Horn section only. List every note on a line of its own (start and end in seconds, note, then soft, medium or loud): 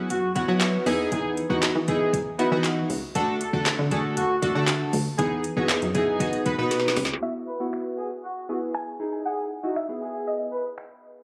0.10 0.30 F#4 medium
0.36 0.45 F#4 medium
1.12 1.31 G#4 loud
1.50 1.60 F#4 medium
1.88 2.24 G#4 medium
2.39 2.49 B4 medium
3.41 3.50 A4 medium
3.91 4.01 G#4 medium
4.17 4.36 F#4 medium
4.43 4.52 F#4 medium
5.19 5.38 G#4 loud
5.57 5.67 F#4 medium
5.95 6.31 G#4 medium
6.46 6.55 B4 medium
7.47 7.57 B4 medium
7.98 8.08 G#4 medium
8.24 8.43 F#4 medium
8.49 8.59 F#4 medium
9.26 9.45 G#4 medium
9.64 9.73 F#4 medium
10.02 10.38 G#4 medium
10.52 10.62 B4 medium